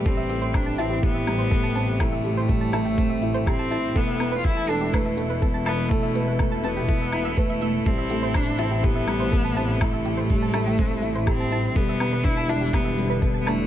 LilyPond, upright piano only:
\new Staff \with { instrumentName = "Upright piano" } { \time 4/4 \key a \minor \tempo 4 = 123 g8 a8 c'8 e'8 g'8 g8 a8 c'8 | e'8 g'8 g8 a8 c'8 e'8 g'8 e'8 | a8 b8 e'8 a'8 b'8 a8 b8 e'8 | a'8 b'8 a8 b8 e'8 e'8 b'8 a8 |
g8 a8 c'8 e'8 g'8 g8 a8 c'8 | e'8 g'8 g8 a8 c'8 e'8 g'8 e'8 | g8 b8 d'8 e'8 g'8 g8 b8 d'8 | }